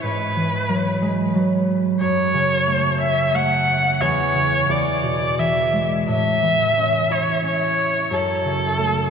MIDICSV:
0, 0, Header, 1, 3, 480
1, 0, Start_track
1, 0, Key_signature, 3, "major"
1, 0, Tempo, 665188
1, 19, Time_signature, 3, 2, 24, 8
1, 2899, Tempo, 688073
1, 4819, Tempo, 672646
1, 6482, End_track
2, 0, Start_track
2, 0, Title_t, "Erhu"
2, 0, Program_c, 0, 110
2, 29, Note_on_c, 0, 71, 78
2, 959, Note_off_c, 0, 71, 0
2, 1444, Note_on_c, 0, 73, 94
2, 2140, Note_off_c, 0, 73, 0
2, 2169, Note_on_c, 0, 76, 88
2, 2415, Note_on_c, 0, 78, 95
2, 2426, Note_off_c, 0, 76, 0
2, 2895, Note_on_c, 0, 73, 91
2, 2906, Note_off_c, 0, 78, 0
2, 3380, Note_on_c, 0, 74, 85
2, 3390, Note_off_c, 0, 73, 0
2, 3859, Note_on_c, 0, 76, 80
2, 3870, Note_off_c, 0, 74, 0
2, 4219, Note_off_c, 0, 76, 0
2, 4343, Note_on_c, 0, 76, 89
2, 5064, Note_on_c, 0, 73, 75
2, 5074, Note_off_c, 0, 76, 0
2, 5302, Note_off_c, 0, 73, 0
2, 5309, Note_on_c, 0, 73, 78
2, 5786, Note_on_c, 0, 69, 77
2, 5796, Note_off_c, 0, 73, 0
2, 6482, Note_off_c, 0, 69, 0
2, 6482, End_track
3, 0, Start_track
3, 0, Title_t, "Harp"
3, 0, Program_c, 1, 46
3, 0, Note_on_c, 1, 61, 52
3, 0, Note_on_c, 1, 64, 46
3, 22, Note_on_c, 1, 44, 57
3, 259, Note_on_c, 1, 52, 45
3, 495, Note_on_c, 1, 54, 50
3, 734, Note_on_c, 1, 56, 49
3, 967, Note_off_c, 1, 54, 0
3, 975, Note_on_c, 1, 54, 54
3, 1177, Note_off_c, 1, 64, 0
3, 1450, Note_on_c, 1, 42, 56
3, 1497, Note_off_c, 1, 44, 0
3, 1497, Note_off_c, 1, 52, 0
3, 1497, Note_off_c, 1, 54, 0
3, 1497, Note_off_c, 1, 56, 0
3, 1619, Note_off_c, 1, 61, 0
3, 1687, Note_on_c, 1, 49, 48
3, 1925, Note_on_c, 1, 57, 53
3, 2166, Note_on_c, 1, 61, 48
3, 2408, Note_off_c, 1, 57, 0
3, 2411, Note_on_c, 1, 57, 52
3, 2894, Note_on_c, 1, 40, 62
3, 2934, Note_off_c, 1, 42, 0
3, 2934, Note_off_c, 1, 49, 0
3, 3128, Note_on_c, 1, 49, 46
3, 3360, Note_off_c, 1, 40, 0
3, 3368, Note_on_c, 1, 40, 59
3, 3406, Note_off_c, 1, 49, 0
3, 3605, Note_on_c, 1, 47, 42
3, 3850, Note_on_c, 1, 52, 47
3, 4093, Note_on_c, 1, 56, 44
3, 4135, Note_off_c, 1, 57, 0
3, 4212, Note_off_c, 1, 61, 0
3, 4332, Note_on_c, 1, 45, 57
3, 4372, Note_off_c, 1, 40, 0
3, 4372, Note_off_c, 1, 47, 0
3, 4372, Note_off_c, 1, 52, 0
3, 4372, Note_off_c, 1, 56, 0
3, 4576, Note_on_c, 1, 52, 45
3, 4817, Note_on_c, 1, 61, 52
3, 5055, Note_on_c, 1, 64, 49
3, 5292, Note_off_c, 1, 61, 0
3, 5295, Note_on_c, 1, 61, 50
3, 5772, Note_on_c, 1, 42, 57
3, 5816, Note_off_c, 1, 45, 0
3, 5816, Note_off_c, 1, 52, 0
3, 6015, Note_on_c, 1, 49, 46
3, 6257, Note_on_c, 1, 57, 53
3, 6482, Note_off_c, 1, 42, 0
3, 6482, Note_off_c, 1, 49, 0
3, 6482, Note_off_c, 1, 57, 0
3, 6482, Note_off_c, 1, 61, 0
3, 6482, Note_off_c, 1, 64, 0
3, 6482, End_track
0, 0, End_of_file